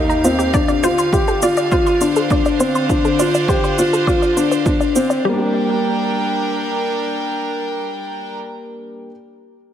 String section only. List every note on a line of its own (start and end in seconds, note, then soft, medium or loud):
0.00 0.54 D#3 medium
0.00 0.54 D#4 medium
0.00 2.42 G4 medium
0.00 5.25 F5 medium
0.54 5.24 D3 medium
1.31 5.25 D4 medium
2.03 5.24 C5 medium
5.24 8.36 G3 medium
5.32 8.35 D4 medium
5.42 8.36 A#4 medium
5.51 8.36 G5 medium